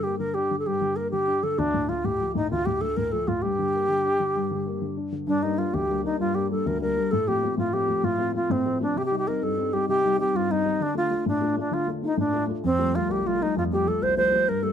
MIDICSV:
0, 0, Header, 1, 3, 480
1, 0, Start_track
1, 0, Key_signature, -2, "minor"
1, 0, Tempo, 307062
1, 2476, Time_signature, 12, 3, 24, 8
1, 23017, End_track
2, 0, Start_track
2, 0, Title_t, "Alto flute"
2, 0, Program_c, 0, 73
2, 55, Note_on_c, 0, 67, 83
2, 285, Note_off_c, 0, 67, 0
2, 294, Note_on_c, 0, 70, 87
2, 535, Note_on_c, 0, 67, 85
2, 559, Note_off_c, 0, 70, 0
2, 915, Note_off_c, 0, 67, 0
2, 928, Note_on_c, 0, 69, 65
2, 1040, Note_on_c, 0, 67, 91
2, 1063, Note_off_c, 0, 69, 0
2, 1504, Note_on_c, 0, 70, 85
2, 1528, Note_off_c, 0, 67, 0
2, 1727, Note_off_c, 0, 70, 0
2, 1737, Note_on_c, 0, 67, 93
2, 2239, Note_on_c, 0, 69, 86
2, 2263, Note_off_c, 0, 67, 0
2, 2481, Note_on_c, 0, 62, 91
2, 2505, Note_off_c, 0, 69, 0
2, 2954, Note_on_c, 0, 65, 76
2, 2977, Note_off_c, 0, 62, 0
2, 3206, Note_on_c, 0, 67, 82
2, 3230, Note_off_c, 0, 65, 0
2, 3679, Note_off_c, 0, 67, 0
2, 3688, Note_on_c, 0, 63, 78
2, 3906, Note_off_c, 0, 63, 0
2, 3921, Note_on_c, 0, 65, 88
2, 4151, Note_on_c, 0, 67, 77
2, 4175, Note_off_c, 0, 65, 0
2, 4395, Note_on_c, 0, 69, 87
2, 4419, Note_off_c, 0, 67, 0
2, 4637, Note_on_c, 0, 70, 83
2, 4661, Note_off_c, 0, 69, 0
2, 4875, Note_on_c, 0, 69, 86
2, 4898, Note_off_c, 0, 70, 0
2, 5124, Note_on_c, 0, 65, 80
2, 5147, Note_off_c, 0, 69, 0
2, 5347, Note_on_c, 0, 67, 100
2, 5371, Note_off_c, 0, 65, 0
2, 7756, Note_off_c, 0, 67, 0
2, 8241, Note_on_c, 0, 62, 90
2, 8483, Note_on_c, 0, 63, 76
2, 8507, Note_off_c, 0, 62, 0
2, 8728, Note_on_c, 0, 65, 70
2, 8751, Note_off_c, 0, 63, 0
2, 8973, Note_on_c, 0, 67, 83
2, 8996, Note_off_c, 0, 65, 0
2, 9448, Note_off_c, 0, 67, 0
2, 9467, Note_on_c, 0, 63, 77
2, 9679, Note_off_c, 0, 63, 0
2, 9693, Note_on_c, 0, 65, 88
2, 9923, Note_on_c, 0, 67, 76
2, 9946, Note_off_c, 0, 65, 0
2, 10163, Note_off_c, 0, 67, 0
2, 10185, Note_on_c, 0, 69, 77
2, 10428, Note_on_c, 0, 70, 81
2, 10451, Note_off_c, 0, 69, 0
2, 10641, Note_off_c, 0, 70, 0
2, 10650, Note_on_c, 0, 70, 94
2, 11117, Note_on_c, 0, 69, 98
2, 11140, Note_off_c, 0, 70, 0
2, 11378, Note_on_c, 0, 67, 88
2, 11401, Note_off_c, 0, 69, 0
2, 11844, Note_off_c, 0, 67, 0
2, 11854, Note_on_c, 0, 65, 80
2, 12088, Note_on_c, 0, 67, 85
2, 12112, Note_off_c, 0, 65, 0
2, 12573, Note_on_c, 0, 65, 93
2, 12597, Note_off_c, 0, 67, 0
2, 13049, Note_off_c, 0, 65, 0
2, 13064, Note_on_c, 0, 65, 80
2, 13309, Note_on_c, 0, 60, 79
2, 13333, Note_off_c, 0, 65, 0
2, 13777, Note_off_c, 0, 60, 0
2, 13792, Note_on_c, 0, 62, 80
2, 14033, Note_on_c, 0, 67, 99
2, 14056, Note_off_c, 0, 62, 0
2, 14145, Note_off_c, 0, 67, 0
2, 14154, Note_on_c, 0, 67, 81
2, 14319, Note_off_c, 0, 67, 0
2, 14353, Note_on_c, 0, 67, 92
2, 14500, Note_on_c, 0, 70, 82
2, 14524, Note_off_c, 0, 67, 0
2, 14746, Note_on_c, 0, 69, 85
2, 14770, Note_off_c, 0, 70, 0
2, 15214, Note_on_c, 0, 67, 88
2, 15237, Note_off_c, 0, 69, 0
2, 15449, Note_off_c, 0, 67, 0
2, 15455, Note_on_c, 0, 67, 100
2, 15896, Note_off_c, 0, 67, 0
2, 15945, Note_on_c, 0, 67, 83
2, 16198, Note_on_c, 0, 65, 87
2, 16221, Note_off_c, 0, 67, 0
2, 16434, Note_on_c, 0, 63, 92
2, 16457, Note_off_c, 0, 65, 0
2, 16920, Note_on_c, 0, 62, 96
2, 16944, Note_off_c, 0, 63, 0
2, 17142, Note_off_c, 0, 62, 0
2, 17152, Note_on_c, 0, 65, 86
2, 17585, Note_off_c, 0, 65, 0
2, 17637, Note_on_c, 0, 62, 85
2, 18067, Note_off_c, 0, 62, 0
2, 18132, Note_on_c, 0, 62, 84
2, 18344, Note_on_c, 0, 65, 92
2, 18368, Note_off_c, 0, 62, 0
2, 18573, Note_off_c, 0, 65, 0
2, 18830, Note_on_c, 0, 63, 82
2, 19040, Note_off_c, 0, 63, 0
2, 19064, Note_on_c, 0, 62, 91
2, 19452, Note_off_c, 0, 62, 0
2, 19769, Note_on_c, 0, 60, 101
2, 20248, Note_on_c, 0, 65, 88
2, 20272, Note_off_c, 0, 60, 0
2, 20498, Note_on_c, 0, 67, 83
2, 20522, Note_off_c, 0, 65, 0
2, 20742, Note_on_c, 0, 65, 84
2, 20765, Note_off_c, 0, 67, 0
2, 20986, Note_on_c, 0, 63, 92
2, 21009, Note_off_c, 0, 65, 0
2, 21212, Note_off_c, 0, 63, 0
2, 21227, Note_on_c, 0, 65, 94
2, 21320, Note_off_c, 0, 65, 0
2, 21455, Note_on_c, 0, 67, 89
2, 21697, Note_on_c, 0, 69, 89
2, 21720, Note_off_c, 0, 67, 0
2, 21928, Note_on_c, 0, 72, 96
2, 21951, Note_off_c, 0, 69, 0
2, 22146, Note_off_c, 0, 72, 0
2, 22155, Note_on_c, 0, 72, 108
2, 22648, Note_on_c, 0, 70, 107
2, 22671, Note_off_c, 0, 72, 0
2, 22870, Note_on_c, 0, 69, 92
2, 22894, Note_off_c, 0, 70, 0
2, 23017, Note_off_c, 0, 69, 0
2, 23017, End_track
3, 0, Start_track
3, 0, Title_t, "Grand piano"
3, 0, Program_c, 1, 0
3, 0, Note_on_c, 1, 43, 57
3, 67, Note_on_c, 1, 58, 49
3, 303, Note_off_c, 1, 58, 0
3, 307, Note_on_c, 1, 50, 44
3, 544, Note_off_c, 1, 50, 0
3, 554, Note_on_c, 1, 62, 51
3, 787, Note_off_c, 1, 62, 0
3, 795, Note_on_c, 1, 50, 43
3, 1012, Note_off_c, 1, 43, 0
3, 1028, Note_off_c, 1, 50, 0
3, 1036, Note_on_c, 1, 43, 57
3, 1270, Note_on_c, 1, 50, 46
3, 1505, Note_off_c, 1, 50, 0
3, 1508, Note_on_c, 1, 58, 46
3, 1744, Note_off_c, 1, 58, 0
3, 1757, Note_on_c, 1, 50, 47
3, 1989, Note_off_c, 1, 50, 0
3, 1990, Note_on_c, 1, 62, 50
3, 2226, Note_off_c, 1, 62, 0
3, 2240, Note_on_c, 1, 50, 51
3, 2433, Note_off_c, 1, 43, 0
3, 2469, Note_on_c, 1, 38, 58
3, 2471, Note_off_c, 1, 50, 0
3, 2719, Note_on_c, 1, 45, 47
3, 2949, Note_on_c, 1, 50, 46
3, 2951, Note_off_c, 1, 45, 0
3, 3185, Note_off_c, 1, 50, 0
3, 3193, Note_on_c, 1, 45, 51
3, 3428, Note_off_c, 1, 45, 0
3, 3445, Note_on_c, 1, 53, 51
3, 3674, Note_off_c, 1, 53, 0
3, 3676, Note_on_c, 1, 45, 49
3, 3905, Note_off_c, 1, 38, 0
3, 3909, Note_off_c, 1, 45, 0
3, 3929, Note_on_c, 1, 38, 58
3, 4167, Note_on_c, 1, 45, 51
3, 4395, Note_off_c, 1, 45, 0
3, 4399, Note_on_c, 1, 50, 43
3, 4632, Note_off_c, 1, 50, 0
3, 4644, Note_on_c, 1, 45, 46
3, 4874, Note_off_c, 1, 45, 0
3, 4881, Note_on_c, 1, 53, 52
3, 5113, Note_off_c, 1, 53, 0
3, 5122, Note_on_c, 1, 45, 49
3, 5322, Note_off_c, 1, 38, 0
3, 5353, Note_off_c, 1, 45, 0
3, 5359, Note_on_c, 1, 43, 59
3, 5607, Note_on_c, 1, 50, 51
3, 5837, Note_off_c, 1, 50, 0
3, 5840, Note_on_c, 1, 58, 46
3, 6073, Note_off_c, 1, 58, 0
3, 6077, Note_on_c, 1, 50, 46
3, 6312, Note_off_c, 1, 50, 0
3, 6332, Note_on_c, 1, 62, 52
3, 6559, Note_off_c, 1, 62, 0
3, 6561, Note_on_c, 1, 50, 46
3, 6782, Note_off_c, 1, 43, 0
3, 6794, Note_off_c, 1, 50, 0
3, 6805, Note_on_c, 1, 43, 58
3, 7051, Note_on_c, 1, 50, 51
3, 7279, Note_off_c, 1, 50, 0
3, 7287, Note_on_c, 1, 58, 49
3, 7517, Note_off_c, 1, 58, 0
3, 7528, Note_on_c, 1, 50, 43
3, 7758, Note_off_c, 1, 50, 0
3, 7767, Note_on_c, 1, 62, 49
3, 7997, Note_off_c, 1, 62, 0
3, 8008, Note_on_c, 1, 50, 46
3, 8201, Note_off_c, 1, 43, 0
3, 8238, Note_off_c, 1, 50, 0
3, 8240, Note_on_c, 1, 43, 61
3, 8482, Note_on_c, 1, 55, 48
3, 8484, Note_on_c, 1, 58, 44
3, 8497, Note_on_c, 1, 62, 50
3, 8701, Note_off_c, 1, 55, 0
3, 8707, Note_off_c, 1, 43, 0
3, 8707, Note_off_c, 1, 58, 0
3, 8718, Note_off_c, 1, 62, 0
3, 8725, Note_on_c, 1, 55, 44
3, 8730, Note_on_c, 1, 58, 40
3, 8741, Note_on_c, 1, 62, 51
3, 8965, Note_on_c, 1, 38, 57
3, 9108, Note_off_c, 1, 55, 0
3, 9111, Note_off_c, 1, 58, 0
3, 9118, Note_off_c, 1, 62, 0
3, 9209, Note_on_c, 1, 55, 47
3, 9211, Note_on_c, 1, 58, 40
3, 9220, Note_on_c, 1, 62, 52
3, 9413, Note_off_c, 1, 55, 0
3, 9417, Note_off_c, 1, 58, 0
3, 9428, Note_off_c, 1, 62, 0
3, 9430, Note_off_c, 1, 38, 0
3, 9437, Note_on_c, 1, 55, 44
3, 9441, Note_on_c, 1, 58, 44
3, 9451, Note_on_c, 1, 62, 53
3, 9682, Note_on_c, 1, 43, 57
3, 9823, Note_off_c, 1, 55, 0
3, 9826, Note_off_c, 1, 58, 0
3, 9832, Note_off_c, 1, 62, 0
3, 9912, Note_on_c, 1, 55, 52
3, 9917, Note_on_c, 1, 58, 47
3, 9929, Note_on_c, 1, 62, 53
3, 10135, Note_off_c, 1, 55, 0
3, 10144, Note_off_c, 1, 58, 0
3, 10148, Note_off_c, 1, 43, 0
3, 10153, Note_off_c, 1, 62, 0
3, 10158, Note_on_c, 1, 55, 46
3, 10167, Note_on_c, 1, 58, 37
3, 10176, Note_on_c, 1, 62, 47
3, 10406, Note_on_c, 1, 38, 57
3, 10544, Note_off_c, 1, 55, 0
3, 10550, Note_off_c, 1, 58, 0
3, 10555, Note_off_c, 1, 62, 0
3, 10637, Note_on_c, 1, 55, 45
3, 10653, Note_on_c, 1, 58, 46
3, 10655, Note_on_c, 1, 62, 51
3, 10870, Note_off_c, 1, 38, 0
3, 10870, Note_off_c, 1, 55, 0
3, 10875, Note_off_c, 1, 58, 0
3, 10880, Note_off_c, 1, 62, 0
3, 10893, Note_on_c, 1, 55, 47
3, 10899, Note_on_c, 1, 58, 43
3, 10904, Note_on_c, 1, 62, 52
3, 11081, Note_off_c, 1, 55, 0
3, 11085, Note_off_c, 1, 58, 0
3, 11088, Note_off_c, 1, 62, 0
3, 11141, Note_on_c, 1, 45, 64
3, 11362, Note_on_c, 1, 53, 43
3, 11374, Note_on_c, 1, 60, 50
3, 11377, Note_on_c, 1, 57, 39
3, 11577, Note_off_c, 1, 53, 0
3, 11584, Note_off_c, 1, 57, 0
3, 11589, Note_off_c, 1, 60, 0
3, 11598, Note_off_c, 1, 45, 0
3, 11601, Note_on_c, 1, 53, 44
3, 11607, Note_on_c, 1, 57, 39
3, 11612, Note_on_c, 1, 60, 51
3, 11843, Note_on_c, 1, 45, 56
3, 11986, Note_off_c, 1, 53, 0
3, 11990, Note_off_c, 1, 57, 0
3, 11993, Note_off_c, 1, 60, 0
3, 12070, Note_on_c, 1, 53, 47
3, 12081, Note_on_c, 1, 57, 41
3, 12089, Note_on_c, 1, 60, 52
3, 12279, Note_off_c, 1, 53, 0
3, 12286, Note_off_c, 1, 57, 0
3, 12289, Note_off_c, 1, 60, 0
3, 12302, Note_on_c, 1, 53, 47
3, 12309, Note_off_c, 1, 45, 0
3, 12309, Note_on_c, 1, 57, 40
3, 12313, Note_on_c, 1, 60, 47
3, 12559, Note_on_c, 1, 45, 61
3, 12695, Note_off_c, 1, 53, 0
3, 12699, Note_off_c, 1, 57, 0
3, 12701, Note_off_c, 1, 60, 0
3, 12784, Note_on_c, 1, 53, 50
3, 12787, Note_on_c, 1, 57, 44
3, 12798, Note_on_c, 1, 60, 50
3, 13007, Note_off_c, 1, 53, 0
3, 13016, Note_off_c, 1, 57, 0
3, 13016, Note_off_c, 1, 60, 0
3, 13027, Note_off_c, 1, 45, 0
3, 13030, Note_on_c, 1, 53, 40
3, 13039, Note_on_c, 1, 57, 36
3, 13040, Note_on_c, 1, 60, 49
3, 13281, Note_on_c, 1, 45, 61
3, 13420, Note_off_c, 1, 53, 0
3, 13425, Note_off_c, 1, 57, 0
3, 13425, Note_off_c, 1, 60, 0
3, 13512, Note_on_c, 1, 53, 48
3, 13520, Note_on_c, 1, 57, 44
3, 13529, Note_on_c, 1, 60, 55
3, 13734, Note_off_c, 1, 53, 0
3, 13744, Note_off_c, 1, 57, 0
3, 13745, Note_off_c, 1, 60, 0
3, 13748, Note_off_c, 1, 45, 0
3, 13757, Note_on_c, 1, 53, 44
3, 13767, Note_on_c, 1, 57, 44
3, 13769, Note_on_c, 1, 60, 52
3, 13952, Note_off_c, 1, 53, 0
3, 13958, Note_off_c, 1, 57, 0
3, 13959, Note_off_c, 1, 60, 0
3, 14007, Note_on_c, 1, 48, 66
3, 14234, Note_on_c, 1, 55, 45
3, 14241, Note_on_c, 1, 60, 40
3, 14249, Note_on_c, 1, 63, 51
3, 14456, Note_off_c, 1, 60, 0
3, 14457, Note_off_c, 1, 55, 0
3, 14462, Note_off_c, 1, 63, 0
3, 14471, Note_off_c, 1, 48, 0
3, 14480, Note_on_c, 1, 55, 43
3, 14480, Note_on_c, 1, 60, 37
3, 14485, Note_on_c, 1, 63, 47
3, 14721, Note_on_c, 1, 43, 62
3, 14865, Note_off_c, 1, 60, 0
3, 14866, Note_off_c, 1, 55, 0
3, 14869, Note_off_c, 1, 63, 0
3, 14961, Note_on_c, 1, 55, 46
3, 14967, Note_on_c, 1, 60, 46
3, 14972, Note_on_c, 1, 63, 50
3, 15180, Note_off_c, 1, 55, 0
3, 15187, Note_off_c, 1, 60, 0
3, 15188, Note_off_c, 1, 43, 0
3, 15192, Note_off_c, 1, 63, 0
3, 15204, Note_on_c, 1, 55, 45
3, 15210, Note_on_c, 1, 60, 42
3, 15215, Note_on_c, 1, 63, 53
3, 15458, Note_on_c, 1, 48, 60
3, 15588, Note_off_c, 1, 55, 0
3, 15592, Note_off_c, 1, 60, 0
3, 15595, Note_off_c, 1, 63, 0
3, 15689, Note_on_c, 1, 55, 49
3, 15692, Note_on_c, 1, 60, 45
3, 15700, Note_on_c, 1, 63, 57
3, 15897, Note_off_c, 1, 55, 0
3, 15897, Note_off_c, 1, 60, 0
3, 15909, Note_off_c, 1, 63, 0
3, 15916, Note_off_c, 1, 48, 0
3, 15920, Note_on_c, 1, 55, 41
3, 15920, Note_on_c, 1, 60, 39
3, 15933, Note_on_c, 1, 63, 47
3, 16158, Note_on_c, 1, 43, 59
3, 16305, Note_off_c, 1, 55, 0
3, 16306, Note_off_c, 1, 60, 0
3, 16313, Note_off_c, 1, 63, 0
3, 16403, Note_on_c, 1, 55, 46
3, 16407, Note_on_c, 1, 60, 41
3, 16409, Note_on_c, 1, 63, 53
3, 16619, Note_off_c, 1, 55, 0
3, 16626, Note_off_c, 1, 43, 0
3, 16627, Note_off_c, 1, 60, 0
3, 16636, Note_off_c, 1, 63, 0
3, 16642, Note_on_c, 1, 55, 46
3, 16651, Note_on_c, 1, 60, 45
3, 16660, Note_on_c, 1, 63, 52
3, 16834, Note_off_c, 1, 55, 0
3, 16840, Note_off_c, 1, 60, 0
3, 16845, Note_off_c, 1, 63, 0
3, 16891, Note_on_c, 1, 50, 65
3, 17110, Note_on_c, 1, 57, 49
3, 17120, Note_on_c, 1, 62, 42
3, 17124, Note_on_c, 1, 65, 51
3, 17335, Note_off_c, 1, 57, 0
3, 17342, Note_off_c, 1, 62, 0
3, 17350, Note_off_c, 1, 65, 0
3, 17353, Note_off_c, 1, 50, 0
3, 17358, Note_on_c, 1, 57, 44
3, 17366, Note_on_c, 1, 62, 40
3, 17374, Note_on_c, 1, 65, 51
3, 17602, Note_on_c, 1, 45, 60
3, 17744, Note_off_c, 1, 57, 0
3, 17749, Note_off_c, 1, 62, 0
3, 17753, Note_off_c, 1, 65, 0
3, 17837, Note_on_c, 1, 57, 48
3, 17841, Note_on_c, 1, 62, 43
3, 17846, Note_on_c, 1, 65, 54
3, 18054, Note_off_c, 1, 57, 0
3, 18061, Note_off_c, 1, 62, 0
3, 18065, Note_off_c, 1, 65, 0
3, 18068, Note_off_c, 1, 45, 0
3, 18077, Note_on_c, 1, 57, 47
3, 18085, Note_on_c, 1, 62, 44
3, 18089, Note_on_c, 1, 65, 49
3, 18311, Note_on_c, 1, 50, 62
3, 18463, Note_off_c, 1, 57, 0
3, 18468, Note_off_c, 1, 62, 0
3, 18470, Note_off_c, 1, 65, 0
3, 18560, Note_on_c, 1, 57, 47
3, 18568, Note_on_c, 1, 62, 45
3, 18574, Note_on_c, 1, 65, 53
3, 18775, Note_off_c, 1, 57, 0
3, 18781, Note_off_c, 1, 62, 0
3, 18782, Note_off_c, 1, 50, 0
3, 18792, Note_off_c, 1, 65, 0
3, 18798, Note_on_c, 1, 57, 43
3, 18804, Note_on_c, 1, 62, 38
3, 18815, Note_on_c, 1, 65, 48
3, 19031, Note_on_c, 1, 45, 58
3, 19183, Note_off_c, 1, 57, 0
3, 19187, Note_off_c, 1, 62, 0
3, 19193, Note_off_c, 1, 65, 0
3, 19270, Note_on_c, 1, 57, 44
3, 19281, Note_on_c, 1, 62, 41
3, 19286, Note_on_c, 1, 65, 53
3, 19478, Note_off_c, 1, 57, 0
3, 19485, Note_off_c, 1, 62, 0
3, 19487, Note_off_c, 1, 65, 0
3, 19501, Note_off_c, 1, 45, 0
3, 19502, Note_on_c, 1, 57, 49
3, 19508, Note_on_c, 1, 62, 40
3, 19511, Note_on_c, 1, 65, 50
3, 19701, Note_off_c, 1, 57, 0
3, 19705, Note_off_c, 1, 62, 0
3, 19707, Note_off_c, 1, 65, 0
3, 19757, Note_on_c, 1, 41, 62
3, 19989, Note_on_c, 1, 53, 45
3, 19989, Note_on_c, 1, 55, 38
3, 19994, Note_on_c, 1, 57, 53
3, 20207, Note_off_c, 1, 53, 0
3, 20219, Note_off_c, 1, 55, 0
3, 20221, Note_off_c, 1, 57, 0
3, 20223, Note_off_c, 1, 41, 0
3, 20230, Note_on_c, 1, 53, 46
3, 20243, Note_on_c, 1, 55, 41
3, 20244, Note_on_c, 1, 57, 53
3, 20459, Note_on_c, 1, 36, 58
3, 20618, Note_off_c, 1, 53, 0
3, 20625, Note_off_c, 1, 55, 0
3, 20626, Note_off_c, 1, 57, 0
3, 20711, Note_on_c, 1, 55, 39
3, 20712, Note_on_c, 1, 53, 46
3, 20721, Note_on_c, 1, 57, 51
3, 20934, Note_off_c, 1, 36, 0
3, 20935, Note_off_c, 1, 53, 0
3, 20942, Note_off_c, 1, 55, 0
3, 20948, Note_off_c, 1, 57, 0
3, 20959, Note_on_c, 1, 53, 45
3, 20965, Note_on_c, 1, 55, 42
3, 20972, Note_on_c, 1, 57, 53
3, 21202, Note_on_c, 1, 41, 65
3, 21342, Note_off_c, 1, 53, 0
3, 21346, Note_off_c, 1, 55, 0
3, 21350, Note_off_c, 1, 57, 0
3, 21427, Note_on_c, 1, 53, 52
3, 21438, Note_on_c, 1, 55, 46
3, 21444, Note_on_c, 1, 57, 50
3, 21640, Note_off_c, 1, 55, 0
3, 21642, Note_off_c, 1, 53, 0
3, 21651, Note_off_c, 1, 57, 0
3, 21663, Note_on_c, 1, 55, 40
3, 21665, Note_off_c, 1, 41, 0
3, 21665, Note_on_c, 1, 53, 46
3, 21674, Note_on_c, 1, 57, 47
3, 21911, Note_on_c, 1, 36, 57
3, 22052, Note_off_c, 1, 55, 0
3, 22053, Note_off_c, 1, 53, 0
3, 22059, Note_off_c, 1, 57, 0
3, 22142, Note_on_c, 1, 53, 46
3, 22149, Note_on_c, 1, 55, 42
3, 22154, Note_on_c, 1, 57, 52
3, 22351, Note_off_c, 1, 53, 0
3, 22358, Note_off_c, 1, 55, 0
3, 22368, Note_off_c, 1, 57, 0
3, 22375, Note_on_c, 1, 53, 48
3, 22378, Note_off_c, 1, 36, 0
3, 22381, Note_on_c, 1, 55, 40
3, 22391, Note_on_c, 1, 57, 55
3, 22575, Note_off_c, 1, 53, 0
3, 22579, Note_off_c, 1, 55, 0
3, 22585, Note_off_c, 1, 57, 0
3, 22628, Note_on_c, 1, 43, 64
3, 22856, Note_on_c, 1, 55, 42
3, 22866, Note_on_c, 1, 57, 43
3, 22873, Note_on_c, 1, 58, 54
3, 23017, Note_off_c, 1, 43, 0
3, 23017, Note_off_c, 1, 55, 0
3, 23017, Note_off_c, 1, 57, 0
3, 23017, Note_off_c, 1, 58, 0
3, 23017, End_track
0, 0, End_of_file